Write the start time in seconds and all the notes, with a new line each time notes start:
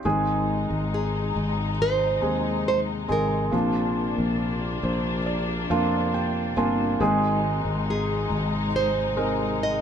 0.05 G#1 G#2 C3 D#3 G#3 C4 D#4 G#4
0.70 G#1
0.94 G#4
1.36 G#1
1.82 C5
2.22 D#2 G#3 C4 D#4 G#4
2.68 C5
3.08 G#1 G#3 C4 D#4 G#4 A#4
3.51 A#1 A#2 F3 A#3 C4 D4 F4
4.18 A#1
4.83 A#1 C5
5.26 D5
5.70 F2 A#3 C4 D4 F4 F5
6.14 G5
6.57 G1 A#3 C4 D4 F4 G#5
6.99 G#1 G#2 D#3 G#3 C4 D#4 G#4
7.65 G#1
7.90 G#4
8.30 G#1
8.76 C5
9.16 G#3 C4 D#4 A#4
9.63 D#5